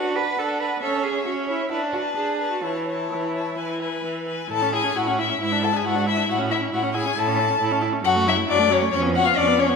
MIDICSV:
0, 0, Header, 1, 5, 480
1, 0, Start_track
1, 0, Key_signature, 3, "major"
1, 0, Tempo, 443787
1, 887, Time_signature, 4, 2, 24, 8
1, 2341, Tempo, 465839
1, 5221, Tempo, 441176
1, 10443, End_track
2, 0, Start_track
2, 0, Title_t, "Violin"
2, 0, Program_c, 0, 40
2, 0, Note_on_c, 0, 78, 40
2, 182, Note_off_c, 0, 78, 0
2, 187, Note_on_c, 0, 78, 41
2, 646, Note_off_c, 0, 78, 0
2, 650, Note_on_c, 0, 78, 39
2, 878, Note_off_c, 0, 78, 0
2, 884, Note_on_c, 0, 76, 37
2, 1119, Note_off_c, 0, 76, 0
2, 1129, Note_on_c, 0, 76, 35
2, 1599, Note_off_c, 0, 76, 0
2, 1607, Note_on_c, 0, 76, 35
2, 1845, Note_off_c, 0, 76, 0
2, 1852, Note_on_c, 0, 81, 33
2, 2090, Note_off_c, 0, 81, 0
2, 2104, Note_on_c, 0, 81, 38
2, 2576, Note_off_c, 0, 81, 0
2, 2597, Note_on_c, 0, 81, 35
2, 2817, Note_off_c, 0, 81, 0
2, 2823, Note_on_c, 0, 81, 32
2, 3064, Note_off_c, 0, 81, 0
2, 3083, Note_on_c, 0, 81, 32
2, 3551, Note_off_c, 0, 81, 0
2, 3556, Note_on_c, 0, 81, 32
2, 3791, Note_off_c, 0, 81, 0
2, 3799, Note_on_c, 0, 80, 31
2, 4032, Note_off_c, 0, 80, 0
2, 4045, Note_on_c, 0, 80, 32
2, 4510, Note_off_c, 0, 80, 0
2, 4529, Note_on_c, 0, 80, 42
2, 4755, Note_off_c, 0, 80, 0
2, 4763, Note_on_c, 0, 81, 78
2, 4976, Note_off_c, 0, 81, 0
2, 4999, Note_on_c, 0, 80, 68
2, 5229, Note_on_c, 0, 78, 74
2, 5245, Note_off_c, 0, 80, 0
2, 5468, Note_off_c, 0, 78, 0
2, 5486, Note_on_c, 0, 76, 59
2, 5712, Note_off_c, 0, 76, 0
2, 5732, Note_on_c, 0, 76, 67
2, 5958, Note_on_c, 0, 81, 78
2, 5974, Note_off_c, 0, 76, 0
2, 6098, Note_on_c, 0, 80, 55
2, 6114, Note_off_c, 0, 81, 0
2, 6203, Note_off_c, 0, 80, 0
2, 6210, Note_on_c, 0, 78, 70
2, 6434, Note_off_c, 0, 78, 0
2, 6445, Note_on_c, 0, 76, 66
2, 6672, Note_off_c, 0, 76, 0
2, 6680, Note_on_c, 0, 78, 80
2, 6767, Note_off_c, 0, 78, 0
2, 6912, Note_on_c, 0, 76, 67
2, 6999, Note_off_c, 0, 76, 0
2, 7158, Note_on_c, 0, 78, 67
2, 7379, Note_off_c, 0, 78, 0
2, 7385, Note_on_c, 0, 80, 68
2, 7642, Note_on_c, 0, 81, 74
2, 7658, Note_off_c, 0, 80, 0
2, 8352, Note_off_c, 0, 81, 0
2, 8578, Note_on_c, 0, 78, 93
2, 8665, Note_off_c, 0, 78, 0
2, 8837, Note_on_c, 0, 76, 78
2, 8924, Note_off_c, 0, 76, 0
2, 9069, Note_on_c, 0, 74, 89
2, 9314, Note_on_c, 0, 73, 80
2, 9330, Note_off_c, 0, 74, 0
2, 9523, Note_off_c, 0, 73, 0
2, 9530, Note_on_c, 0, 73, 84
2, 9617, Note_off_c, 0, 73, 0
2, 9783, Note_on_c, 0, 78, 90
2, 9889, Note_on_c, 0, 77, 77
2, 9905, Note_off_c, 0, 78, 0
2, 10020, Note_on_c, 0, 74, 90
2, 10036, Note_off_c, 0, 77, 0
2, 10272, Note_on_c, 0, 73, 83
2, 10289, Note_off_c, 0, 74, 0
2, 10443, Note_off_c, 0, 73, 0
2, 10443, End_track
3, 0, Start_track
3, 0, Title_t, "Violin"
3, 0, Program_c, 1, 40
3, 0, Note_on_c, 1, 71, 34
3, 177, Note_off_c, 1, 71, 0
3, 184, Note_on_c, 1, 71, 45
3, 645, Note_off_c, 1, 71, 0
3, 654, Note_on_c, 1, 71, 42
3, 884, Note_off_c, 1, 71, 0
3, 897, Note_on_c, 1, 73, 43
3, 1121, Note_off_c, 1, 73, 0
3, 1127, Note_on_c, 1, 73, 37
3, 1598, Note_off_c, 1, 73, 0
3, 1607, Note_on_c, 1, 73, 40
3, 1842, Note_off_c, 1, 73, 0
3, 1848, Note_on_c, 1, 71, 32
3, 2084, Note_off_c, 1, 71, 0
3, 2091, Note_on_c, 1, 71, 36
3, 2570, Note_off_c, 1, 71, 0
3, 2583, Note_on_c, 1, 71, 33
3, 2817, Note_off_c, 1, 71, 0
3, 2823, Note_on_c, 1, 73, 35
3, 3055, Note_off_c, 1, 73, 0
3, 3061, Note_on_c, 1, 73, 34
3, 3540, Note_off_c, 1, 73, 0
3, 3555, Note_on_c, 1, 73, 33
3, 3790, Note_off_c, 1, 73, 0
3, 3797, Note_on_c, 1, 71, 30
3, 4028, Note_off_c, 1, 71, 0
3, 4034, Note_on_c, 1, 71, 37
3, 4504, Note_off_c, 1, 71, 0
3, 4514, Note_on_c, 1, 71, 40
3, 4747, Note_off_c, 1, 71, 0
3, 4758, Note_on_c, 1, 69, 66
3, 4984, Note_on_c, 1, 68, 58
3, 5000, Note_off_c, 1, 69, 0
3, 5218, Note_on_c, 1, 66, 61
3, 5235, Note_off_c, 1, 68, 0
3, 5468, Note_on_c, 1, 64, 58
3, 5484, Note_off_c, 1, 66, 0
3, 5696, Note_off_c, 1, 64, 0
3, 5703, Note_on_c, 1, 64, 60
3, 5941, Note_off_c, 1, 64, 0
3, 5947, Note_on_c, 1, 69, 63
3, 5995, Note_off_c, 1, 69, 0
3, 6066, Note_on_c, 1, 68, 53
3, 6185, Note_on_c, 1, 66, 63
3, 6201, Note_off_c, 1, 68, 0
3, 6433, Note_on_c, 1, 64, 60
3, 6449, Note_off_c, 1, 66, 0
3, 6668, Note_on_c, 1, 66, 62
3, 6685, Note_off_c, 1, 64, 0
3, 6911, Note_on_c, 1, 64, 55
3, 6928, Note_off_c, 1, 66, 0
3, 7145, Note_off_c, 1, 64, 0
3, 7152, Note_on_c, 1, 66, 61
3, 7239, Note_off_c, 1, 66, 0
3, 7385, Note_on_c, 1, 68, 65
3, 7621, Note_off_c, 1, 68, 0
3, 7631, Note_on_c, 1, 69, 64
3, 8332, Note_off_c, 1, 69, 0
3, 8585, Note_on_c, 1, 66, 79
3, 8831, Note_on_c, 1, 64, 69
3, 8848, Note_off_c, 1, 66, 0
3, 9058, Note_off_c, 1, 64, 0
3, 9064, Note_on_c, 1, 62, 76
3, 9304, Note_on_c, 1, 61, 69
3, 9320, Note_off_c, 1, 62, 0
3, 9536, Note_off_c, 1, 61, 0
3, 9542, Note_on_c, 1, 61, 79
3, 9777, Note_off_c, 1, 61, 0
3, 9802, Note_on_c, 1, 66, 76
3, 9915, Note_on_c, 1, 65, 58
3, 9931, Note_off_c, 1, 66, 0
3, 10026, Note_on_c, 1, 62, 79
3, 10042, Note_off_c, 1, 65, 0
3, 10263, Note_off_c, 1, 62, 0
3, 10268, Note_on_c, 1, 61, 68
3, 10443, Note_off_c, 1, 61, 0
3, 10443, End_track
4, 0, Start_track
4, 0, Title_t, "Cello"
4, 0, Program_c, 2, 42
4, 0, Note_on_c, 2, 66, 72
4, 174, Note_on_c, 2, 71, 66
4, 190, Note_off_c, 2, 66, 0
4, 414, Note_on_c, 2, 69, 60
4, 430, Note_off_c, 2, 71, 0
4, 648, Note_on_c, 2, 71, 58
4, 665, Note_off_c, 2, 69, 0
4, 883, Note_off_c, 2, 71, 0
4, 889, Note_on_c, 2, 69, 69
4, 1121, Note_on_c, 2, 68, 57
4, 1138, Note_off_c, 2, 69, 0
4, 1354, Note_off_c, 2, 68, 0
4, 1361, Note_on_c, 2, 66, 51
4, 1447, Note_off_c, 2, 66, 0
4, 1602, Note_on_c, 2, 64, 45
4, 1838, Note_off_c, 2, 64, 0
4, 1845, Note_on_c, 2, 64, 62
4, 1931, Note_off_c, 2, 64, 0
4, 2089, Note_on_c, 2, 66, 51
4, 2176, Note_off_c, 2, 66, 0
4, 2332, Note_on_c, 2, 68, 47
4, 2691, Note_off_c, 2, 68, 0
4, 2700, Note_on_c, 2, 66, 48
4, 2820, Note_on_c, 2, 64, 44
4, 2836, Note_off_c, 2, 66, 0
4, 4511, Note_off_c, 2, 64, 0
4, 4746, Note_on_c, 2, 45, 54
4, 5162, Note_off_c, 2, 45, 0
4, 5211, Note_on_c, 2, 45, 46
4, 5643, Note_off_c, 2, 45, 0
4, 5700, Note_on_c, 2, 44, 59
4, 6128, Note_off_c, 2, 44, 0
4, 6178, Note_on_c, 2, 44, 53
4, 6606, Note_off_c, 2, 44, 0
4, 6664, Note_on_c, 2, 45, 61
4, 7090, Note_off_c, 2, 45, 0
4, 7145, Note_on_c, 2, 45, 54
4, 7569, Note_off_c, 2, 45, 0
4, 7624, Note_on_c, 2, 45, 72
4, 8047, Note_off_c, 2, 45, 0
4, 8100, Note_on_c, 2, 45, 53
4, 8524, Note_off_c, 2, 45, 0
4, 8576, Note_on_c, 2, 42, 70
4, 9001, Note_off_c, 2, 42, 0
4, 9054, Note_on_c, 2, 42, 60
4, 9482, Note_off_c, 2, 42, 0
4, 9540, Note_on_c, 2, 41, 79
4, 9964, Note_off_c, 2, 41, 0
4, 10022, Note_on_c, 2, 41, 65
4, 10443, Note_off_c, 2, 41, 0
4, 10443, End_track
5, 0, Start_track
5, 0, Title_t, "Viola"
5, 0, Program_c, 3, 41
5, 0, Note_on_c, 3, 62, 54
5, 363, Note_off_c, 3, 62, 0
5, 421, Note_on_c, 3, 62, 49
5, 834, Note_off_c, 3, 62, 0
5, 898, Note_on_c, 3, 61, 50
5, 1314, Note_off_c, 3, 61, 0
5, 1365, Note_on_c, 3, 61, 49
5, 1791, Note_off_c, 3, 61, 0
5, 1852, Note_on_c, 3, 62, 50
5, 2283, Note_off_c, 3, 62, 0
5, 2338, Note_on_c, 3, 62, 42
5, 2766, Note_off_c, 3, 62, 0
5, 2828, Note_on_c, 3, 52, 45
5, 3257, Note_off_c, 3, 52, 0
5, 3321, Note_on_c, 3, 52, 41
5, 3741, Note_off_c, 3, 52, 0
5, 3801, Note_on_c, 3, 52, 45
5, 4221, Note_off_c, 3, 52, 0
5, 4275, Note_on_c, 3, 52, 41
5, 4697, Note_off_c, 3, 52, 0
5, 4748, Note_on_c, 3, 64, 43
5, 4869, Note_on_c, 3, 61, 43
5, 4885, Note_off_c, 3, 64, 0
5, 4982, Note_on_c, 3, 64, 43
5, 4997, Note_off_c, 3, 61, 0
5, 5100, Note_on_c, 3, 61, 38
5, 5115, Note_off_c, 3, 64, 0
5, 5209, Note_off_c, 3, 61, 0
5, 5215, Note_on_c, 3, 64, 45
5, 5343, Note_on_c, 3, 61, 42
5, 5359, Note_off_c, 3, 64, 0
5, 5467, Note_on_c, 3, 64, 45
5, 5484, Note_off_c, 3, 61, 0
5, 5587, Note_on_c, 3, 61, 37
5, 5603, Note_off_c, 3, 64, 0
5, 5702, Note_off_c, 3, 61, 0
5, 5709, Note_on_c, 3, 64, 46
5, 5827, Note_on_c, 3, 62, 41
5, 5844, Note_off_c, 3, 64, 0
5, 5945, Note_on_c, 3, 64, 43
5, 5961, Note_off_c, 3, 62, 0
5, 6054, Note_on_c, 3, 62, 38
5, 6071, Note_off_c, 3, 64, 0
5, 6176, Note_off_c, 3, 62, 0
5, 6183, Note_on_c, 3, 64, 44
5, 6301, Note_on_c, 3, 62, 47
5, 6318, Note_off_c, 3, 64, 0
5, 6424, Note_on_c, 3, 64, 44
5, 6440, Note_off_c, 3, 62, 0
5, 6535, Note_on_c, 3, 62, 45
5, 6551, Note_off_c, 3, 64, 0
5, 6649, Note_off_c, 3, 62, 0
5, 6656, Note_on_c, 3, 64, 51
5, 6777, Note_on_c, 3, 61, 46
5, 6793, Note_off_c, 3, 64, 0
5, 6897, Note_on_c, 3, 64, 46
5, 6914, Note_off_c, 3, 61, 0
5, 7021, Note_on_c, 3, 61, 43
5, 7037, Note_off_c, 3, 64, 0
5, 7133, Note_off_c, 3, 61, 0
5, 7140, Note_on_c, 3, 64, 48
5, 7256, Note_on_c, 3, 61, 48
5, 7272, Note_off_c, 3, 64, 0
5, 7380, Note_on_c, 3, 64, 48
5, 7396, Note_off_c, 3, 61, 0
5, 7499, Note_on_c, 3, 61, 40
5, 7516, Note_off_c, 3, 64, 0
5, 7612, Note_off_c, 3, 61, 0
5, 7618, Note_on_c, 3, 64, 44
5, 7743, Note_on_c, 3, 61, 49
5, 7760, Note_off_c, 3, 64, 0
5, 7866, Note_on_c, 3, 64, 47
5, 7882, Note_off_c, 3, 61, 0
5, 7982, Note_on_c, 3, 61, 46
5, 7998, Note_off_c, 3, 64, 0
5, 8095, Note_off_c, 3, 61, 0
5, 8101, Note_on_c, 3, 64, 48
5, 8220, Note_on_c, 3, 61, 51
5, 8236, Note_off_c, 3, 64, 0
5, 8334, Note_on_c, 3, 64, 44
5, 8350, Note_off_c, 3, 61, 0
5, 8453, Note_on_c, 3, 61, 48
5, 8469, Note_off_c, 3, 64, 0
5, 8560, Note_off_c, 3, 61, 0
5, 8566, Note_on_c, 3, 54, 53
5, 8698, Note_on_c, 3, 57, 53
5, 8714, Note_off_c, 3, 54, 0
5, 8823, Note_on_c, 3, 54, 49
5, 8839, Note_off_c, 3, 57, 0
5, 8936, Note_on_c, 3, 57, 48
5, 8952, Note_off_c, 3, 54, 0
5, 9047, Note_off_c, 3, 57, 0
5, 9054, Note_on_c, 3, 54, 55
5, 9172, Note_on_c, 3, 57, 55
5, 9189, Note_off_c, 3, 54, 0
5, 9290, Note_on_c, 3, 54, 61
5, 9306, Note_off_c, 3, 57, 0
5, 9408, Note_on_c, 3, 57, 45
5, 9425, Note_off_c, 3, 54, 0
5, 9530, Note_off_c, 3, 57, 0
5, 9536, Note_on_c, 3, 61, 56
5, 9644, Note_on_c, 3, 59, 52
5, 9660, Note_off_c, 3, 61, 0
5, 9771, Note_on_c, 3, 61, 52
5, 9787, Note_off_c, 3, 59, 0
5, 9892, Note_on_c, 3, 59, 55
5, 9908, Note_off_c, 3, 61, 0
5, 10006, Note_off_c, 3, 59, 0
5, 10013, Note_on_c, 3, 61, 57
5, 10135, Note_on_c, 3, 59, 63
5, 10152, Note_off_c, 3, 61, 0
5, 10257, Note_on_c, 3, 61, 57
5, 10273, Note_off_c, 3, 59, 0
5, 10372, Note_on_c, 3, 59, 59
5, 10389, Note_off_c, 3, 61, 0
5, 10443, Note_off_c, 3, 59, 0
5, 10443, End_track
0, 0, End_of_file